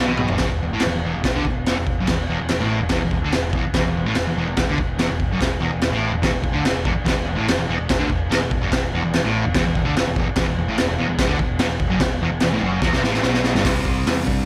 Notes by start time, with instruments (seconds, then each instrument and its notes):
0.00 picked electric bass B1, distorted electric guitar B2
0.08 high tom
0.17 mid tom
0.28 picked electric bass G1, distorted electric guitar G2, floor tom
0.38 picked electric bass E1, distorted electric guitar E2, kick, snare, crash
0.52 picked electric bass E1, distorted electric guitar E2
0.62 picked electric bass E1, distorted electric guitar E2
0.73 picked electric bass A1, distorted electric guitar A2
0.80 snare, crash
0.84 picked electric bass E1, distorted electric guitar E2
0.94 picked electric bass E1, distorted electric guitar E2
1.04 picked electric bass E1, distorted electric guitar E2
1.16 picked electric bass E1, distorted electric guitar E2
1.24 picked electric bass E1, distorted electric guitar E2, kick, snare, crash
1.35 picked electric bass D2, distorted electric guitar D3
1.45 picked electric bass E1, distorted electric guitar E2, kick
1.66 picked electric bass E1, distorted electric guitar E2, snare, crash
1.77 picked electric bass E1, distorted electric guitar E2
1.87 kick
1.98 picked electric bass F#1, distorted electric guitar F#2
2.07 picked electric bass E1, distorted electric guitar E2, kick, snare, crash
2.29 picked electric bass E1, distorted electric guitar E2
2.40 picked electric bass E1, distorted electric guitar E2
2.49 picked electric bass E1, distorted electric guitar E2, snare, crash
2.60 picked electric bass A1, distorted electric guitar A2
2.80 picked electric bass E1, distorted electric guitar E2
2.89 picked electric bass E1, distorted electric guitar E2, kick, snare, crash
3.02 picked electric bass E1, distorted electric guitar E2
3.11 picked electric bass E1, distorted electric guitar E2, kick
3.22 picked electric bass D2, distorted electric guitar D3
3.32 picked electric bass E1, distorted electric guitar E2, snare, crash
3.41 picked electric bass E1
3.46 distorted electric guitar E2
3.53 picked electric bass E1, distorted electric guitar E2, kick
3.62 muted picked electric bass stroke
3.67 muted distorted electric guitar stroke
3.74 picked electric bass E1, distorted electric guitar E2, kick, snare, crash
3.84 picked electric bass E1, distorted electric guitar E2
3.93 picked electric bass E1, distorted electric guitar E2
4.04 picked electric bass A1, distorted electric guitar A2
4.15 picked electric bass E1, distorted electric guitar E2, snare, crash
4.26 picked electric bass E1, distorted electric guitar E2
4.35 picked electric bass E1, distorted electric guitar E2
4.47 picked electric bass E1, distorted electric guitar E2
4.57 picked electric bass E1, distorted electric guitar E2, kick, snare, crash
4.68 picked electric bass D2, distorted electric guitar D3
4.78 picked electric bass E1, distorted electric guitar E2, kick
4.99 picked electric bass E1, distorted electric guitar E2, snare, crash
5.09 picked electric bass E1, distorted electric guitar E2
5.20 kick
5.30 picked electric bass F#1, distorted electric guitar F#2
5.40 picked electric bass E1, distorted electric guitar E2, kick, snare, crash
5.60 picked electric bass E1, distorted electric guitar E2
5.71 picked electric bass E1, distorted electric guitar E2
5.80 picked electric bass E1, distorted electric guitar E2, snare, crash
5.90 picked electric bass A1, distorted electric guitar A2
6.10 picked electric bass E1, distorted electric guitar E2
6.22 picked electric bass E1, distorted electric guitar E2, kick, snare, crash
6.33 picked electric bass E1, distorted electric guitar E2
6.42 picked electric bass E1, distorted electric guitar E2, kick
6.53 picked electric bass D2, distorted electric guitar D3
6.64 picked electric bass E1, distorted electric guitar E2, snare, crash
6.74 picked electric bass E1, distorted electric guitar E2
6.85 picked electric bass E1, distorted electric guitar E2, kick
6.95 muted distorted electric guitar stroke
7.05 picked electric bass E1, distorted electric guitar E2, kick, snare, crash
7.16 picked electric bass E1, distorted electric guitar E2
7.26 picked electric bass E1, distorted electric guitar E2
7.36 picked electric bass A1, distorted electric guitar A2
7.48 picked electric bass E1, distorted electric guitar E2, snare, crash
7.58 picked electric bass E1, distorted electric guitar E2
7.68 picked electric bass E1, distorted electric guitar E2
7.79 picked electric bass E1, distorted electric guitar E2
7.89 picked electric bass E1, distorted electric guitar E2, kick, snare, crash
7.98 picked electric bass D2, distorted electric guitar D3
8.10 picked electric bass E1, distorted electric guitar E2, kick
8.29 picked electric bass E1, distorted electric guitar E2, snare, crash
8.42 picked electric bass E1, distorted electric guitar E2
8.51 kick
8.62 picked electric bass F#1, distorted electric guitar F#2
8.72 picked electric bass E1, distorted electric guitar E2, kick, snare, crash
8.93 picked electric bass E1, distorted electric guitar E2
9.04 picked electric bass E1, distorted electric guitar E2
9.13 picked electric bass E1, distorted electric guitar E2, snare, crash
9.24 picked electric bass A1, distorted electric guitar A2
9.45 picked electric bass E1, distorted electric guitar E2
9.54 picked electric bass E1, distorted electric guitar E2, kick, snare, crash
9.65 picked electric bass E1, distorted electric guitar E2
9.75 picked electric bass E1, distorted electric guitar E2, kick
9.85 picked electric bass D2, distorted electric guitar D3
9.95 picked electric bass E1, distorted electric guitar E2, snare, crash
10.06 picked electric bass E1, distorted electric guitar E2
10.16 picked electric bass E1, distorted electric guitar E2, kick
10.27 muted picked electric bass stroke, muted distorted electric guitar stroke
10.36 picked electric bass E1, kick, snare, crash
10.40 distorted electric guitar E2
10.47 picked electric bass E1, distorted electric guitar E2
10.57 picked electric bass E1, distorted electric guitar E2
10.68 picked electric bass A1, distorted electric guitar A2
10.78 picked electric bass E1, distorted electric guitar E2, snare, crash
10.87 picked electric bass E1, distorted electric guitar E2
10.99 picked electric bass E1, distorted electric guitar E2
11.07 picked electric bass E1, distorted electric guitar E2
11.19 picked electric bass E1, distorted electric guitar E2, kick, snare, crash
11.27 picked electric bass D2, distorted electric guitar D3
11.39 picked electric bass E1, distorted electric guitar E2, kick
11.59 picked electric bass E1, distorted electric guitar E2, snare, crash
11.69 picked electric bass E1, distorted electric guitar E2
11.80 kick
11.89 picked electric bass F#1, distorted electric guitar F#2
12.00 picked electric bass E1, distorted electric guitar E2, kick, snare, crash
12.21 picked electric bass E1, distorted electric guitar E2
12.29 picked electric bass E1, distorted electric guitar E2
12.40 picked electric bass E1, distorted electric guitar E2, snare, crash
12.51 picked electric bass A1, distorted electric guitar A2
12.61 picked electric bass F#1, distorted electric guitar F#2
12.82 picked electric bass E1, distorted electric guitar E2, kick, snare
12.90 picked electric bass C2, distorted electric guitar C3, snare
13.02 picked electric bass A1, distorted electric guitar A2, snare
13.14 snare
13.23 picked electric bass B1, distorted electric guitar B2, snare
13.34 snare
13.44 snare
13.54 picked electric bass G1, distorted electric guitar G2, snare
13.64 picked electric bass C2, distorted electric guitar C3 G3, kick, snare, open hi-hat
13.69 distorted electric guitar C4
13.85 kick
14.07 picked electric bass E2, snare, open hi-hat
14.27 picked electric bass G2, kick